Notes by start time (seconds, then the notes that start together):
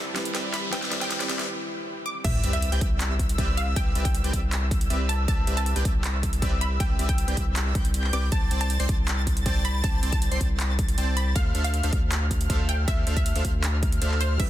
Already playing: C2 G3 C4 E4 G4 B4 D5 E5, riser
0.14 G3 C4 E4 B4, snare, closed hi-hat
0.25 closed hi-hat
0.34 C2 C4 G4 B4 D5 E5, snare, closed hi-hat
0.54 B5, snare, closed hi-hat
0.70 C2 G3 C4 E4 G4 B4 D5 E5 G5, snare, closed hi-hat
0.74 B4
0.82 snare
0.91 C2 C4 G4 B4 D5 E5, snare, closed hi-hat
1.01 G5, snare, closed hi-hat
1.11 snare, closed hi-hat
1.20 C2 C4 G4 B4 D5 G5, snare, closed hi-hat
1.29 C2 C4 G4 B4 D5 E5, snare, closed hi-hat
1.39 snare
2.06 D6
2.24 C2 C4 G4 B4 D5 E5 E6, kick, closed hi-hat, crash, sub drop
2.43 C2 C4 G4 B4 D5 E5 E6, closed hi-hat
2.53 E5, closed hi-hat
2.62 closed hi-hat
2.72 C2 C4 G4 B4 D5 G5 G6, closed hi-hat
2.81 C2 E6, kick, closed hi-hat
3.00 clap, closed hi-hat
3.19 kick, closed hi-hat
3.29 closed hi-hat
3.38 C2 C4 G4 B4 D5 E5 E6, kick, closed hi-hat
3.57 F5, closed hi-hat
3.76 C2 C4 G4 B4 D5 E5 G5 E6, kick, closed hi-hat
3.95 C2 C4 G4 B4 D5 E5 E6, closed hi-hat
4.05 G5, kick, closed hi-hat
4.15 closed hi-hat
4.24 C2 C4 G4 B4 D5 G5 G6, closed hi-hat
4.33 C2 C4 G4 B4 D5 E5 E6, kick, closed hi-hat
4.52 clap, closed hi-hat
4.71 kick, closed hi-hat
4.81 closed hi-hat
4.90 C2 C4 G4 B4 D5 E5 E6, closed hi-hat
5.09 A5, closed hi-hat
5.28 C2 C4 G4 B4 D5 E5 A5 E6, kick, closed hi-hat
5.47 C2 C4 G4 B4 D5 E5 E6, closed hi-hat
5.57 A5, closed hi-hat
5.66 closed hi-hat
5.76 C2 C4 G4 B4 D5 G5 G6, closed hi-hat
5.85 C2 C4 G4 B4 D5 E5 E6, kick, closed hi-hat
6.04 clap, closed hi-hat
6.23 kick, closed hi-hat
6.33 closed hi-hat
6.42 C2 C4 G4 B4 D5 E5 E6, kick, closed hi-hat
6.61 B5, closed hi-hat
6.80 C2 C4 G4 B4 D5 E5 G5 E6, kick, closed hi-hat
6.99 C2 C4 G4 B4 D5 E5 E6, closed hi-hat
7.09 G5, kick, closed hi-hat
7.18 closed hi-hat
7.28 C2 C4 G4 B4 D5 G5 G6, closed hi-hat
7.37 C2 E6, kick, closed hi-hat
7.56 clap, closed hi-hat
7.75 C2 C4 G4 B4 D5 G5 G6, kick, closed hi-hat
7.85 closed hi-hat
7.94 closed hi-hat
8.04 clap
8.13 C2 C4 G4 B4 D5 G5 D6 G6, closed hi-hat
8.32 C2 C4 C5 D5 G5 A5 A6, kick, closed hi-hat
8.51 C2 C4 C5 D5 G5 A5 A6, closed hi-hat
8.61 A5, closed hi-hat
8.70 closed hi-hat
8.80 C2 C4 C5 D5 G5 C6 C7, closed hi-hat
8.89 C2 C4 C5 D5 A5 A6, kick, closed hi-hat
9.08 clap, closed hi-hat
9.27 kick, closed hi-hat
9.37 closed hi-hat
9.46 C2 C4 C5 D5 G5 A5 A6, kick, closed hi-hat
9.65 B5, closed hi-hat
9.84 C2 C4 C5 D5 G5 A5 A6, kick, closed hi-hat
10.03 C2 C4 C5 D5 G5 A5 A6, closed hi-hat
10.12 A5, kick, closed hi-hat
10.22 closed hi-hat
10.31 C2 C4 C5 D5 G5 C6 C7, closed hi-hat
10.40 C2 C4 C5 G5 A6, kick, closed hi-hat
10.60 clap, closed hi-hat
10.79 kick, closed hi-hat
10.88 closed hi-hat
10.98 C2 C4 C5 D5 G5 A5 A6, closed hi-hat
11.17 B5, closed hi-hat
11.36 D2 D4 A4 C5 E5 F5 F6, kick, closed hi-hat
11.55 D2 D4 A4 C5 E5 F5 F6, closed hi-hat
11.64 F5, closed hi-hat
11.74 closed hi-hat
11.83 D2 D4 A4 C5 E5 F5 F6, closed hi-hat
11.93 D2 D4 A4 C5 E5 F5 F6, kick, closed hi-hat
12.12 clap, closed hi-hat
12.31 kick, closed hi-hat
12.41 closed hi-hat
12.50 D2 D4 A4 C5 E5 F5 F6, kick, closed hi-hat
12.69 G5, closed hi-hat
12.88 D2 D4 A4 C5 E5 F5 F6, kick, closed hi-hat
13.07 D2 D4 A4 C5 E5 F5 F6, closed hi-hat
13.17 E5, kick, closed hi-hat
13.26 closed hi-hat
13.35 D2 D4 A4 C5 E5 F5 F6, closed hi-hat
13.45 D2 D4 F6, kick, closed hi-hat
13.64 clap, closed hi-hat
13.83 kick, closed hi-hat
13.92 closed hi-hat
14.02 D2 D4 A4 C5 E5 F5 F6, closed hi-hat
14.12 clap
14.21 C5, closed hi-hat
14.37 C2 G3 C4 E4 G4 B4 D5 E5 E6, kick, closed hi-hat, crash
14.41 B4